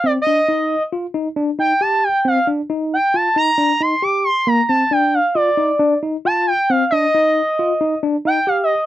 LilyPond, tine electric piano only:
\new Staff \with { instrumentName = "Tine electric piano" } { \time 5/4 \key c \dorian \tempo 4 = 135 c'8 d'8 ees'4 f'8 ees'8 d'8 ees'8 g'4 | c'8 d'8 ees'4 f'8 ees'8 d'8 ees'8 g'4 | bes8 c'8 d'4 f'8 ees'8 d'8 ees'8 f'4 | c'8 d'8 ees'4 f'8 ees'8 d'8 ees'8 g'4 | }